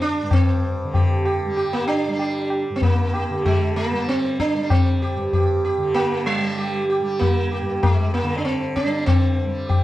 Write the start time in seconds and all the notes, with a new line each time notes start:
Already playing: G2 D3 G3
0.00 D4, tabla te
0.22 G2
0.31 C4, tabla na, tabla ge
0.84 D3
0.94 G4, tabla tin, tabla ge
1.25 G4, tabla na
1.46 G3
1.56 G4, tabla na
1.73 A#3
1.88 D4, tabla na
2.08 G3
2.19 G4, tabla tin
2.50 tabla na
2.70 G2
2.76 C4
2.82 A#3, tabla tin, tabla ge
3.14 G4, tabla na
3.30 D3
3.46 G#3, tabla na, tabla ge
3.76 A#3
3.91 G3
4.09 C4, tabla te
4.24 tabla te
4.40 D4, tabla ke
4.55 G3, tabla te
4.70 C4, tabla na, tabla ge
5.02 G4
5.16 G2
5.33 G4, tabla tin, tabla ge
5.65 G4
5.78 D3
5.94 A#3, tabla na
6.26 G3
6.38 G3
6.58 G4, tabla tin
6.90 G4, tabla na
7.01 G3
7.19 A#3, tabla tin, tabla ge
7.52 G4
7.61 G2
7.83 G#3, tabla na, tabla ge
8.14 A#3
8.23 D3
8.38 D4
8.45 C4, tabla te
8.61 tabla te
8.76 D4, tabla ke
8.85 G3
8.92 tabla te
9.06 C4, tabla na, tabla ge
9.46 G3
9.69 G4, tabla tin, tabla ge